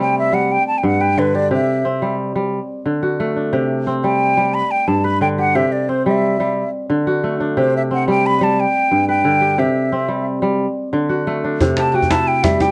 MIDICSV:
0, 0, Header, 1, 4, 480
1, 0, Start_track
1, 0, Tempo, 336511
1, 2157, Time_signature, 12, 3, 24, 8
1, 18134, End_track
2, 0, Start_track
2, 0, Title_t, "Flute"
2, 0, Program_c, 0, 73
2, 5, Note_on_c, 0, 79, 88
2, 222, Note_off_c, 0, 79, 0
2, 265, Note_on_c, 0, 76, 84
2, 486, Note_on_c, 0, 78, 87
2, 507, Note_off_c, 0, 76, 0
2, 739, Note_on_c, 0, 79, 94
2, 761, Note_off_c, 0, 78, 0
2, 952, Note_off_c, 0, 79, 0
2, 960, Note_on_c, 0, 81, 90
2, 1113, Note_on_c, 0, 79, 56
2, 1134, Note_off_c, 0, 81, 0
2, 1210, Note_on_c, 0, 78, 90
2, 1231, Note_off_c, 0, 79, 0
2, 1441, Note_on_c, 0, 79, 91
2, 1462, Note_off_c, 0, 78, 0
2, 1692, Note_on_c, 0, 71, 81
2, 1713, Note_off_c, 0, 79, 0
2, 1927, Note_on_c, 0, 74, 90
2, 1949, Note_off_c, 0, 71, 0
2, 2162, Note_off_c, 0, 74, 0
2, 2185, Note_on_c, 0, 76, 69
2, 3077, Note_off_c, 0, 76, 0
2, 5764, Note_on_c, 0, 79, 87
2, 6479, Note_on_c, 0, 83, 94
2, 6501, Note_off_c, 0, 79, 0
2, 6720, Note_on_c, 0, 79, 94
2, 6741, Note_off_c, 0, 83, 0
2, 6957, Note_on_c, 0, 81, 83
2, 6978, Note_off_c, 0, 79, 0
2, 7192, Note_on_c, 0, 83, 89
2, 7213, Note_off_c, 0, 81, 0
2, 7433, Note_off_c, 0, 83, 0
2, 7441, Note_on_c, 0, 79, 91
2, 7527, Note_off_c, 0, 79, 0
2, 7692, Note_on_c, 0, 78, 95
2, 7923, Note_on_c, 0, 76, 87
2, 7944, Note_off_c, 0, 78, 0
2, 8161, Note_on_c, 0, 74, 74
2, 8182, Note_off_c, 0, 76, 0
2, 8403, Note_on_c, 0, 72, 75
2, 8424, Note_off_c, 0, 74, 0
2, 8644, Note_off_c, 0, 72, 0
2, 8659, Note_on_c, 0, 76, 73
2, 9554, Note_off_c, 0, 76, 0
2, 10831, Note_on_c, 0, 72, 85
2, 11041, Note_off_c, 0, 72, 0
2, 11077, Note_on_c, 0, 76, 79
2, 11163, Note_off_c, 0, 76, 0
2, 11319, Note_on_c, 0, 78, 90
2, 11525, Note_off_c, 0, 78, 0
2, 11538, Note_on_c, 0, 79, 98
2, 11785, Note_on_c, 0, 83, 88
2, 11807, Note_off_c, 0, 79, 0
2, 12030, Note_on_c, 0, 81, 84
2, 12051, Note_off_c, 0, 83, 0
2, 12267, Note_on_c, 0, 79, 93
2, 12289, Note_off_c, 0, 81, 0
2, 12956, Note_off_c, 0, 79, 0
2, 12965, Note_on_c, 0, 79, 92
2, 13683, Note_on_c, 0, 76, 77
2, 13705, Note_off_c, 0, 79, 0
2, 14639, Note_off_c, 0, 76, 0
2, 16809, Note_on_c, 0, 81, 85
2, 17005, Note_off_c, 0, 81, 0
2, 17005, Note_on_c, 0, 81, 65
2, 17036, Note_on_c, 0, 79, 92
2, 17057, Note_off_c, 0, 81, 0
2, 17280, Note_on_c, 0, 81, 101
2, 17301, Note_off_c, 0, 79, 0
2, 17512, Note_on_c, 0, 79, 91
2, 17534, Note_off_c, 0, 81, 0
2, 17740, Note_on_c, 0, 76, 86
2, 17762, Note_off_c, 0, 79, 0
2, 17993, Note_on_c, 0, 79, 99
2, 18014, Note_off_c, 0, 76, 0
2, 18134, Note_off_c, 0, 79, 0
2, 18134, End_track
3, 0, Start_track
3, 0, Title_t, "Kora"
3, 0, Program_c, 1, 46
3, 0, Note_on_c, 1, 48, 72
3, 0, Note_on_c, 1, 55, 69
3, 0, Note_on_c, 1, 57, 71
3, 0, Note_on_c, 1, 60, 59
3, 0, Note_on_c, 1, 62, 51
3, 0, Note_on_c, 1, 67, 59
3, 445, Note_off_c, 1, 55, 0
3, 462, Note_on_c, 1, 55, 62
3, 783, Note_off_c, 1, 48, 0
3, 783, Note_off_c, 1, 55, 0
3, 1189, Note_on_c, 1, 43, 70
3, 1276, Note_off_c, 1, 67, 0
3, 1425, Note_off_c, 1, 62, 0
3, 1434, Note_on_c, 1, 71, 59
3, 1519, Note_off_c, 1, 60, 0
3, 1636, Note_off_c, 1, 57, 0
3, 1676, Note_on_c, 1, 50, 70
3, 1917, Note_on_c, 1, 67, 49
3, 2148, Note_off_c, 1, 67, 0
3, 2151, Note_on_c, 1, 48, 70
3, 2154, Note_on_c, 1, 67, 55
3, 2228, Note_off_c, 1, 43, 0
3, 2228, Note_off_c, 1, 50, 0
3, 2237, Note_off_c, 1, 71, 0
3, 2636, Note_on_c, 1, 60, 60
3, 2882, Note_on_c, 1, 55, 67
3, 3342, Note_off_c, 1, 55, 0
3, 3360, Note_on_c, 1, 55, 64
3, 3672, Note_off_c, 1, 48, 0
3, 3672, Note_off_c, 1, 55, 0
3, 4073, Note_on_c, 1, 50, 60
3, 4169, Note_off_c, 1, 67, 0
3, 4316, Note_on_c, 1, 66, 59
3, 4562, Note_on_c, 1, 57, 71
3, 4798, Note_on_c, 1, 62, 45
3, 5031, Note_on_c, 1, 48, 71
3, 5034, Note_on_c, 1, 67, 56
3, 5114, Note_off_c, 1, 50, 0
3, 5119, Note_off_c, 1, 66, 0
3, 5204, Note_off_c, 1, 60, 0
3, 5518, Note_on_c, 1, 60, 64
3, 5760, Note_on_c, 1, 55, 68
3, 6219, Note_off_c, 1, 55, 0
3, 6236, Note_on_c, 1, 55, 69
3, 6555, Note_off_c, 1, 55, 0
3, 6556, Note_off_c, 1, 48, 0
3, 6955, Note_on_c, 1, 43, 66
3, 7048, Note_off_c, 1, 67, 0
3, 7193, Note_off_c, 1, 62, 0
3, 7193, Note_on_c, 1, 71, 64
3, 7279, Note_off_c, 1, 60, 0
3, 7411, Note_off_c, 1, 57, 0
3, 7433, Note_on_c, 1, 50, 76
3, 7678, Note_on_c, 1, 67, 54
3, 7916, Note_off_c, 1, 67, 0
3, 7918, Note_on_c, 1, 48, 63
3, 7922, Note_on_c, 1, 67, 58
3, 7996, Note_off_c, 1, 43, 0
3, 7996, Note_off_c, 1, 50, 0
3, 8003, Note_off_c, 1, 71, 0
3, 8401, Note_on_c, 1, 60, 57
3, 8645, Note_on_c, 1, 55, 75
3, 9112, Note_off_c, 1, 55, 0
3, 9129, Note_on_c, 1, 55, 70
3, 9436, Note_off_c, 1, 48, 0
3, 9436, Note_off_c, 1, 55, 0
3, 9837, Note_on_c, 1, 50, 75
3, 9936, Note_off_c, 1, 67, 0
3, 10084, Note_on_c, 1, 66, 65
3, 10322, Note_on_c, 1, 57, 64
3, 10560, Note_on_c, 1, 62, 62
3, 10797, Note_on_c, 1, 48, 75
3, 10800, Note_on_c, 1, 67, 61
3, 10875, Note_off_c, 1, 50, 0
3, 10885, Note_off_c, 1, 66, 0
3, 10968, Note_off_c, 1, 60, 0
3, 11280, Note_on_c, 1, 60, 66
3, 11522, Note_on_c, 1, 55, 73
3, 11979, Note_off_c, 1, 55, 0
3, 11997, Note_on_c, 1, 55, 78
3, 12313, Note_off_c, 1, 48, 0
3, 12313, Note_off_c, 1, 55, 0
3, 12715, Note_on_c, 1, 43, 66
3, 12814, Note_off_c, 1, 67, 0
3, 12955, Note_off_c, 1, 62, 0
3, 12960, Note_on_c, 1, 71, 64
3, 13046, Note_off_c, 1, 60, 0
3, 13170, Note_off_c, 1, 57, 0
3, 13188, Note_on_c, 1, 50, 75
3, 13423, Note_on_c, 1, 67, 51
3, 13664, Note_off_c, 1, 67, 0
3, 13665, Note_on_c, 1, 48, 71
3, 13670, Note_on_c, 1, 67, 62
3, 13750, Note_off_c, 1, 43, 0
3, 13750, Note_off_c, 1, 50, 0
3, 13750, Note_off_c, 1, 71, 0
3, 14153, Note_on_c, 1, 60, 67
3, 14384, Note_on_c, 1, 55, 68
3, 14848, Note_off_c, 1, 55, 0
3, 14865, Note_on_c, 1, 55, 75
3, 15187, Note_off_c, 1, 48, 0
3, 15187, Note_off_c, 1, 55, 0
3, 15588, Note_on_c, 1, 50, 77
3, 15684, Note_off_c, 1, 67, 0
3, 15824, Note_on_c, 1, 66, 64
3, 16077, Note_on_c, 1, 57, 76
3, 16321, Note_on_c, 1, 62, 58
3, 16560, Note_on_c, 1, 48, 79
3, 16622, Note_off_c, 1, 50, 0
3, 16721, Note_off_c, 1, 60, 0
3, 16794, Note_on_c, 1, 67, 58
3, 16879, Note_off_c, 1, 66, 0
3, 17029, Note_on_c, 1, 66, 59
3, 17271, Note_on_c, 1, 64, 80
3, 17746, Note_on_c, 1, 55, 64
3, 17832, Note_off_c, 1, 66, 0
3, 17977, Note_off_c, 1, 67, 0
3, 17983, Note_on_c, 1, 67, 69
3, 18056, Note_off_c, 1, 48, 0
3, 18056, Note_off_c, 1, 55, 0
3, 18134, Note_off_c, 1, 57, 0
3, 18134, Note_off_c, 1, 62, 0
3, 18134, Note_off_c, 1, 64, 0
3, 18134, Note_off_c, 1, 67, 0
3, 18134, End_track
4, 0, Start_track
4, 0, Title_t, "Djembe"
4, 16554, Note_on_c, 9, 63, 59
4, 16554, Note_on_c, 9, 64, 59
4, 16697, Note_off_c, 9, 63, 0
4, 16697, Note_off_c, 9, 64, 0
4, 16785, Note_on_c, 9, 62, 53
4, 16907, Note_off_c, 9, 62, 0
4, 16907, Note_on_c, 9, 62, 21
4, 17050, Note_off_c, 9, 62, 0
4, 17152, Note_on_c, 9, 62, 21
4, 17152, Note_on_c, 9, 64, 49
4, 17268, Note_off_c, 9, 62, 0
4, 17268, Note_on_c, 9, 62, 69
4, 17268, Note_on_c, 9, 63, 59
4, 17294, Note_off_c, 9, 64, 0
4, 17410, Note_off_c, 9, 62, 0
4, 17410, Note_off_c, 9, 63, 0
4, 17742, Note_on_c, 9, 62, 65
4, 17742, Note_on_c, 9, 64, 60
4, 17861, Note_off_c, 9, 62, 0
4, 17861, Note_on_c, 9, 62, 19
4, 17884, Note_off_c, 9, 64, 0
4, 17978, Note_on_c, 9, 63, 63
4, 18003, Note_off_c, 9, 62, 0
4, 18120, Note_off_c, 9, 63, 0
4, 18134, End_track
0, 0, End_of_file